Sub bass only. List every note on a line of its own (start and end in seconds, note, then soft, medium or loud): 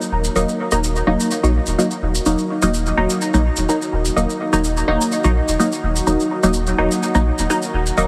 0.12 0.28 D#1 medium
0.36 0.44 D#1 medium
0.72 1.01 D#1 medium
1.07 1.15 D#1 medium
1.43 1.59 A#1 medium
1.67 1.75 D#1 loud
2.02 2.19 D#1 medium
2.26 2.34 D#1 loud
2.62 2.92 D#1 medium
2.97 3.06 D#1 medium
3.34 3.49 A#1 medium
3.58 3.65 D#1 loud
3.93 4.09 D#1 medium
4.17 4.25 D#1 medium
4.53 4.82 D#1 medium
4.88 4.96 D#1 medium
5.24 5.40 A#1 medium
5.48 5.56 D#1 loud
5.83 6.00 D#1 medium
6.07 6.15 D#1 loud
6.43 6.73 D#1 medium
6.78 6.87 D#1 medium
7.15 7.30 A#1 medium
7.39 7.46 D#1 loud
7.74 7.90 D#1 medium
7.97 8.06 D#1 loud